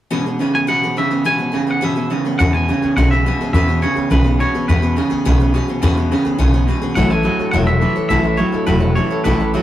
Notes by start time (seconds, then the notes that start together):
0.10 E2 B2 C#3 E3 B3 C#4 G#4 B4
0.26 B3 C#4 G#4 B4
0.39 E2 C#3 B3 C#4 G#4 B4
0.55 B3 C#4 G#4 B4 G#5
0.67 E2 B2 C#3 E3 B3 C#4 G#4 B4 F#5
0.83 B3 C#4 G#4 B4
0.96 E2 C#3 B3 C#4 G#4 B4 E5
1.10 B3 C#4 G#4 B4
1.24 E2 B2 C#3 E3 B3 C#4 G#4 B4 G#5
1.38 B3 C#4 G#4 B4
1.52 E2 C#3 B3 C#4 G#4 B4
1.67 B3 C#4 G#4 B4
1.71 F#5
1.81 E2 B2 C#3 E3 B3 C#4 G#4 B4 E5
1.96 B3 C#4 G#4 B4
2.10 E2 C#3 B3 C#4 G#4 B4
2.25 B3 C#4 G#4 B4
2.39 E2 B2 C#3 E3 B3 C#4 G#4 B4 F#5
2.53 B3 C#4 G#4 B4 G#5
2.68 E2 C#3 B3 C#4 G#4 B4
2.82 B3 C#4 G#4 B4, muted upright bass stroke
2.97 B1 E2 C#3 E3 B3 C#4 G#4 B4 F#5
3.11 B3 C#4 G#4 B4 E5
3.25 E2 B2 B3 C#4 G#4 B4
3.39 B3 C#4 G#4 B4, muted upright bass stroke
3.53 E2 B2 C#3 E3 B3 C#4 G#4 B4 E5
3.68 B3 C#4 G#4 B4
3.82 E2 C#3 B3 C#4 G#4 B4 C#5
3.95 B3 C#4 G#4 B4, muted upright bass stroke
4.10 B1 E2 C#3 E3 B3 C#4 G#4 B4
4.24 B3 C#4 G#4 B4
4.40 E2 B2 B3 C#4 G#4 B4 C#5
4.54 B3 C#4 G#4 B4, muted upright bass stroke
4.68 E2 B2 C#3 E3 B3 C#4 G#4 B4
4.82 B3 C#4 G#4 B4
4.96 E2 C#3 B3 C#4 G#4 B4
5.10 B3 C#4 G#4 B4, muted upright bass stroke
5.25 B1 E2 C#3 E3 B3 C#4 G#4 B4
5.40 B3 C#4 G#4 B4
5.54 E2 B2 B3 C#4 G#4 B4
5.68 B3 C#4 G#4 B4, muted upright bass stroke
5.82 E2 B2 C#3 E3 B3 C#4 G#4 B4
5.97 B3 C#4 G#4 B4
6.11 E2 C#3 B3 C#4 G#4 B4
6.25 B3 C#4 G#4 B4, muted upright bass stroke
6.38 B1 E2 C#3 E3 B3 C#4 G#4 B4
6.53 B3 C#4 G#4 B4
6.67 E2 B2 B3 C#4 G#4 B4
6.82 B3 C#4 G#4 B4, muted upright bass stroke
6.95 A1 A2 E3 F#3 A3 E4 A4 C#5 F#5
7.10 E4 A4 C#5 G#5
7.23 A2 F#3 E4 A4 C#5
7.39 E4 A4 C#5, muted upright bass stroke
7.51 E1 A2 F#3 A3 E4 A4 C#5 F#5
7.67 E4 A4 C#5 E5
7.81 A2 E3 F#3 E4 A4 C#5
7.96 E4 A4 C#5, muted upright bass stroke
8.09 A1 A2 E3 F#3 A3 E4 A4 C#5 E5
8.23 E4 A4 C#5
8.37 A2 F#3 E4 A4 C#5
8.52 E4 A4 C#5, muted upright bass stroke
8.66 E1 A2 F#3 A3 E4 A4 B4 C#5
8.80 E4 A4 C#5
8.96 A2 E3 F#3 E4 A4 C#5
9.10 E4 A4 C#5, muted upright bass stroke
9.24 A1 A2 E3 F#3 A3 E4 A4 B4 C#5
9.40 E4 A4 C#5
9.54 A2 F#3 E4 A4 C#5